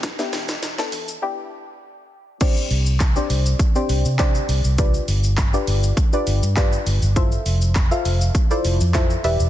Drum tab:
CC |----------------|x---------------|----------------|----------------|
HH |x-o-x-o---------|x-o-x-o-x-o-x-o-|x-o-x-o-x-o-x-o-|x-o-x-o-x-o-x-o-|
SH |xxxxxxxx--------|xxxxxxxxxxxxxxxx|xxxxxxxxxxxxxxxx|xxxxxxxxxxxxxxxx|
CP |----------------|----x-------x---|----x-------x---|----x-------x---|
SD |oooooo----------|----------------|----------------|----------------|
BD |o---------------|o---o---o---o---|o---o---o---o---|o---o---o---o---|